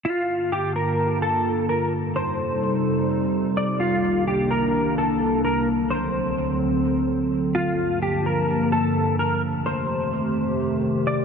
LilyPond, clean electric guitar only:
\new Staff \with { instrumentName = "Clean electric guitar" } { \time 4/4 \key g \minor \tempo 4 = 128 f'4 g'8 bes'4 a'4 bes'8 | r8 c''2. d''8 | f'4 g'8 bes'4 a'4 bes'8 | r8 c''4. r2 |
f'4 g'8 bes'4 a'4 bes'8 | r8 c''2. d''8 | }